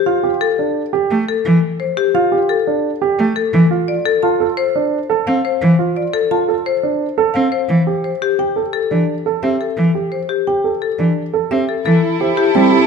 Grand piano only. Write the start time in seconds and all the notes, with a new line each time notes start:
0.06 F4
0.23 G4
0.59 D4
0.93 G4
2.15 F4
2.32 G4
2.67 D4
3.02 G4
3.71 F4
4.23 F4
4.40 A4
4.75 D4
5.10 A4
5.79 F4
6.31 F4
6.49 A4
6.83 D4
7.18 A4
7.87 G4
8.39 G4
8.56 A4
8.91 D4
9.26 A4
9.43 G4
9.95 G4
10.47 G4
10.64 A4
10.99 D4
11.34 A4
11.51 G4
12.21 G4
12.55 C4
12.72 G4